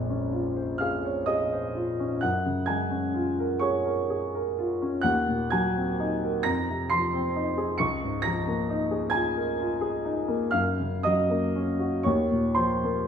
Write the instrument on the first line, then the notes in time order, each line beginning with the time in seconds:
grand piano
Already playing: A#1 F2 G#3
0.10 C#4
0.32 F4
0.56 C5
0.78 G#4 F5 F6
1.05 C#5
1.26 G#4 D#5 D#6
1.53 C5
1.75 F4
2.00 C#4
2.21 F#2 F#5 F#6
2.45 C#3
2.66 G#3 G#5 G#6
2.91 C#4
3.14 F4
3.40 A#4
3.59 G#4 C#5 C#6
3.85 A#4
4.10 G#4
4.35 A#4
4.58 F4
4.82 C#4
5.01 D#2 F#5 F#6
5.29 A#2
5.50 F#3 G#5 G#6
5.76 C4
6.00 D#4
6.23 A#4
6.43 F2 A#5 A#6
6.70 C3
6.90 F3 C6 C7
7.13 C4
7.36 D#4
7.57 G#4
7.78 C#2 C#6 C#7
8.04 G#2
8.22 F3 A#5 A#6
8.47 A#3
8.70 D#4
8.91 G#4
9.10 F4 G#5 G#6
9.37 A#4
9.59 F4
9.81 G#4
10.05 D#4
10.28 A#3
10.51 F#2 F5 F6
10.80 C#3
11.03 F#3 D#5 D#6
11.30 A#3
11.56 C#4
11.79 F#4
12.03 D#2 C#5 C#6
12.31 A#2
12.55 F3 C5 C6
12.84 A#3